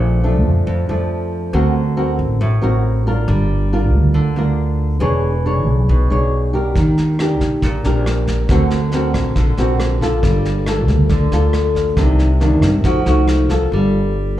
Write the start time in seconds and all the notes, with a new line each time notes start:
Already playing: A#1 A#2 F3 A3 D4
0.24 F3 A3 D4
0.45 F2
0.67 F2
0.89 F2 F3 A3 D4
1.53 D2 D3 C4 F#4 A#4
1.97 C4 F#4 A#4
2.19 A1
2.41 A1 A2
2.62 A1 C4 F#4 A#4
3.07 D4 F4 A#4
3.28 G1 G3
3.73 D4 F4 A#4
3.93 D2
4.14 D2 D3
4.36 D2 D4 F4 A#4
5.00 E1 E3 D4 G#4 C#5
5.46 D4 G#4 C#5
5.68 B1
5.89 B1 B2
6.10 B1 D4 G#4 C#5
6.53 D4 G4 A#4
6.76 D#2 D#3, kick, snare
6.98 snare
7.19 D4 G4 A#4, cross-stick, snare
7.40 A#1, kick, snare
7.62 A#1 A#2, kick, snare
7.84 A#1 D4 G4 A#4, snare
8.06 cross-stick, snare
8.27 kick, snare
8.49 D2 D3 C4 F#4 A#4, kick, cross-stick, snare
8.70 snare
8.92 C4 F#4 A#4, snare
9.14 A#1, kick, cross-stick, snare
9.36 A#1 D3, kick, snare
9.57 A#1 C4 F#4 A#4, snare
9.80 cross-stick, snare
10.01 A#3 F4 A4, kick, snare
10.23 G1 G3, kick, snare
10.45 snare
10.66 A#3 F4 A4, cross-stick, snare
10.88 D2, kick, snare
11.09 D2 D3, kick, snare
11.32 D2 A#3 F4 A4, snare
11.53 cross-stick, snare
11.75 kick, snare
11.97 C2 C3 D#3 A#3 D4, kick, cross-stick, snare
12.19 snare
12.40 D#3 A#3 D4, snare
12.62 G2, kick, cross-stick, snare
12.84 F2 F3 A3 D#4 F#4, kick, snare
13.06 C2 A3 D#4 F#4, snare
13.28 cross-stick, snare
13.49 A#3 F4 A4, kick, snare
13.72 G1 G3